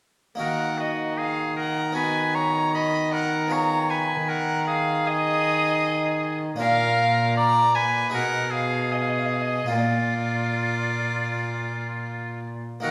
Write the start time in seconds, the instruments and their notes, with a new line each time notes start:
0.35 cello D#3, harpsichord A#3 D#4 F#4, oboe A#4
0.40 harpsichord D#3, violin F#5
0.78 oboe F#4, violin D#5
1.17 oboe G#4, violin F5
1.56 oboe A#4, violin F#5
1.92 harpsichord B3 D#4 F#4, oboe B4, violin G#5
2.35 oboe C#5, violin A#5
2.75 oboe D#5, violin B5
3.13 oboe A#4, violin F#5
3.48 harpsichord B3 F4 G#4, violin A#5
3.52 oboe C#5
3.90 oboe B4, violin G#5
4.29 oboe A#4, violin F#5
4.67 oboe G#4, violin F5
5.07 oboe G#4, violin D#5
6.56 cello A#2, harpsichord A#3 D4 F4, oboe A#4
6.60 harpsichord A#2, violin F5
7.37 oboe D5, violin A#5
7.75 oboe B4, violin G#5
8.10 harpsichord D#4 G#4
8.14 harpsichord B2, cello B2, oboe A#4, violin F#5
8.51 oboe G#4, violin F5
8.91 oboe G#4, violin D#5
9.02 violin F5
9.09 violin D#5
9.18 violin F5
9.26 violin D#5
9.33 violin F5
9.41 violin D#5
9.66 harpsichord A#3 F4, oboe F4
9.70 cello A#2, harpsichord A#2, violin D5
12.80 cello D#3, harpsichord A#3 D#4 F#4, oboe A#4, violin F#5
12.85 harpsichord D#3